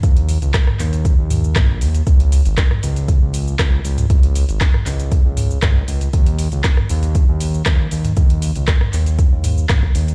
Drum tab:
HH |xxoxx-oxx-o-x-ox|xxoxx-oxx-o-x-ox|xxoxx-oxx-o-x-ox|xxoxx-oxx-o-x-ox|
SH |x-xxx-xxx-xxx-xx|x-xxx-xxx-xxx-xx|x-xxx-xxx-xxx-xx|x-xxx-xxx-xxx-xx|
CP |----x-x-----x---|----x-------x---|----x-x-----x---|----x-------x---|
SD |----rr------r---|----rr------r---|----rr------r---|----rr------r---|
T2 |-----o----o-o---|-----o---------o|-----o----o-o---|-----o---------o|
BD |o---o---o---o---|o---o---o---o---|o---o---o---o---|o---o---o---o---|

HH |xxoxx-oxx-o-x-ox|
SH |x-xxx-xxx-xxx-xx|
CP |----x-x-----x---|
SD |----rr------r---|
T2 |-----o----o-o---|
BD |o---o---o---oo--|